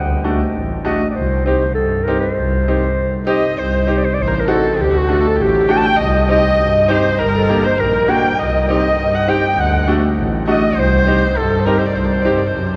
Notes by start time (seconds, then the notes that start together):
Already playing: D2 F#5
0.24 A3 D4 F#4
0.54 A1
0.85 A3 D4 F#4 D#5
1.11 D5
1.15 C2 C5
1.46 C4 D#4 G4 C5
1.75 G2 A4
2.04 C4 A#4
2.08 D#4 G4
2.20 C5
2.37 C2
2.68 C4 D#4 G4
3.27 C4 D#4 G4 D#5
3.57 C2 C5
3.87 C4 D#4 G4 C5
3.98 D5
4.04 C5
4.14 D5
4.18 A1 C5
4.22 C5
4.28 A#4
4.34 C5
4.40 A#4
4.47 C4 D#4 F#4 A4
4.77 D2 G4
4.81 G4
4.90 F#4
4.98 F#4
5.09 A3 D4 F#4
5.20 A4
5.27 A4
5.36 A1 G4
5.42 G4
5.68 A3 D4 F#4 G5
5.77 A5
5.81 G5
5.87 G5
5.96 C2 D#5
6.00 D#5
6.28 C4 D#4 G4 D#5
6.58 G2
6.88 C4 D#4 G4 C5
7.18 G1 A#4
7.37 A4
7.49 A#3 D4 G4
7.64 C5
7.78 A#1 A#4
8.08 A#3 D4 F#4 G5
8.39 C2 D#5
8.68 C4 D#4 G4 D#5
8.98 G2
9.15 F#5
9.28 C4 D#4 G4 G5
9.56 D2 F#5
9.60 F#5
9.88 A3 D4 F#4
10.15 A1
10.47 A3 D4 F#4 D#5
10.76 C2 C5
11.07 C4 D#4 G4 C5
11.36 G2 A4
11.60 C5
11.66 C4 D#4 G4 A#4
11.79 C5
11.86 D5
11.94 C2 C5
12.05 D5
12.13 C5
12.22 G2 C4 D#4 G4 D5
12.29 C5
12.38 D5
12.47 C5
12.52 F#2